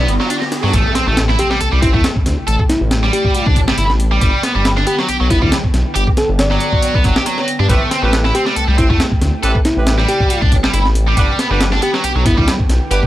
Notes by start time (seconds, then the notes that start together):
Already playing: D3 B3 G5, riser
0.08 G1, closed hi-hat
0.20 F#3, snare
0.30 D4, closed hi-hat
0.42 snare
0.52 snare, closed hi-hat
0.64 G2 F#3
0.73 A1 C3 A3 G5, kick, closed hi-hat, impact
0.95 C4, snare, closed hi-hat
1.07 A1 A3
1.17 snare, closed hi-hat
1.29 E4, snare
1.39 C4 G4, closed hi-hat
1.51 G3, snare
1.61 C2 A4, closed hi-hat
1.73 C2 G3
1.82 A1 C4 E4, kick, closed hi-hat
1.94 E2 A3 E4, kick
2.04 snare, closed hi-hat
2.16 kick
2.26 D2, snare, closed hi-hat
2.48 A1 A4, closed hi-hat
2.59 kick
2.69 E4, snare, closed hi-hat
2.81 A1
2.91 snare, closed hi-hat
3.03 G3, snare
3.13 G4, closed hi-hat
3.25 kick
3.35 closed hi-hat
3.46 C2 D4, kick
3.56 A1, kick, closed hi-hat
3.68 G1 G3, snare
3.78 G1 E4, closed hi-hat
3.90 A1, snare
4.00 closed hi-hat
4.11 G3
4.21 G1 D3 G3 B3, kick, closed hi-hat
4.43 B3, snare, closed hi-hat
4.55 G1 G3
4.65 snare, closed hi-hat
4.77 D4, snare
4.87 B3 G4, closed hi-hat
4.99 F#3, snare
5.08 B1 G4, closed hi-hat
5.20 B1 F#3
5.30 G1 B3 E4, kick, closed hi-hat
5.42 D2 G3 E4, kick
5.52 snare, closed hi-hat
5.64 kick
5.74 B1, snare, closed hi-hat
5.96 G1 G4, closed hi-hat
6.07 kick
6.17 A4, snare, closed hi-hat
6.29 G1
6.39 D5, snare, closed hi-hat
6.51 F#3, snare
6.60 closed hi-hat
6.73 kick
6.82 closed hi-hat
6.94 B1 B3, kick
7.04 G1 F#3, kick, closed hi-hat
7.16 G4, snare
7.26 F#3, closed hi-hat
7.38 snare
7.48 closed hi-hat
7.60 G2 D4
7.69 A1 C3 A3 C4 E4 G4 B4, kick, closed hi-hat
7.91 C4, snare, closed hi-hat
8.03 A1 A3 C4 E4 G4 B4
8.13 snare, closed hi-hat
8.25 E4, snare
8.35 C4 G4, closed hi-hat
8.46 G3, snare
8.56 C2 A4, closed hi-hat
8.68 C2 G3
8.78 A1 C4 E4, kick, closed hi-hat
8.90 E2 A3 E4, kick
9.00 snare, closed hi-hat
9.12 kick
9.22 D2, snare, closed hi-hat
9.43 A1 C4 E4 G4 A4 B4, closed hi-hat
9.55 kick
9.65 E4, snare, closed hi-hat
9.77 A1 C4 E4 G4 B4
9.87 snare, closed hi-hat
9.98 G3, snare
10.08 G4, closed hi-hat
10.20 kick
10.30 closed hi-hat
10.42 C2 D4, kick
10.52 A1, kick, closed hi-hat
10.64 G1 G3, snare
10.74 G1 E4, closed hi-hat
10.85 A1, snare
10.95 closed hi-hat
11.08 G3
11.17 G1 D3 G3 B3 D4 G4 B4 G5, kick, closed hi-hat
11.39 B3, snare, closed hi-hat
11.51 G1 G3 B3 D4 G4 B4
11.61 snare, closed hi-hat
11.72 D4, snare
11.82 B3 G4, closed hi-hat
11.94 F#3, snare
12.04 B1 G4, closed hi-hat
12.16 B1 F#3
12.26 G1 B3 E4, kick, closed hi-hat
12.38 D2 G3 E4, kick
12.48 snare, closed hi-hat
12.60 kick
12.69 B1, snare, closed hi-hat
12.91 G1 B3 D4 G4 B4, closed hi-hat
13.03 kick